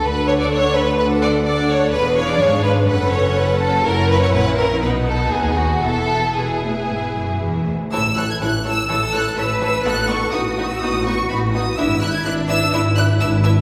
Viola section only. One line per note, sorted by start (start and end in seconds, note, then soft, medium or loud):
0.04 0.95 D4 medium
0.04 0.95 A4 medium
0.99 1.45 D4 medium
0.99 1.45 A4 medium
1.46 1.92 D4 medium
1.46 1.92 A4 medium
1.93 2.86 D4 medium
1.93 2.88 G#4 medium
2.88 3.84 C#4 medium
2.88 3.84 A4 medium
3.85 4.80 C#4 medium
3.85 4.82 E4 medium
4.81 5.81 B3 medium
4.81 5.82 D#4 medium
5.83 6.35 B3 medium
5.83 6.35 E4 medium
6.37 7.69 B3 medium
6.37 7.69 E4 medium
7.92 8.00 E3 medium
7.92 8.00 E4 medium
8.17 8.25 E3 medium
8.17 8.25 E4 medium
8.42 8.50 E3 medium
8.42 8.50 E4 medium
8.65 8.73 E3 medium
8.65 8.73 E4 medium
8.88 8.97 E3 medium
8.88 8.96 E4 medium
9.13 9.21 E3 medium
9.13 9.21 E4 medium
9.36 9.44 E3 medium
9.36 9.44 E4 medium
9.60 9.68 E3 medium
9.60 9.68 E4 medium
9.84 9.92 B3 medium
9.84 9.92 D#4 medium
10.08 10.16 B3 medium
10.08 10.16 D#4 medium
10.33 10.41 B3 medium
10.33 10.41 D#4 medium
10.57 10.65 B3 medium
10.57 10.66 D#4 medium
10.82 10.90 B3 medium
10.82 10.90 D#4 medium
11.06 11.14 B3 medium
11.06 11.14 D#4 medium
11.30 11.38 B3 medium
11.30 11.38 D#4 medium
11.54 11.62 B3 medium
11.54 11.62 D#4 medium
11.78 11.86 D4 medium
11.78 11.86 E4 medium
12.02 12.10 D4 medium
12.02 12.10 E4 medium
12.25 12.33 D4 medium
12.25 12.33 E4 medium
12.50 12.58 D4 medium
12.50 12.58 E4 medium
12.73 12.81 D4 medium
12.73 12.81 E4 medium
12.95 13.04 D4 medium
12.95 13.03 E4 medium
13.20 13.28 D4 medium
13.20 13.28 E4 medium
13.44 13.52 D4 medium
13.44 13.52 E4 medium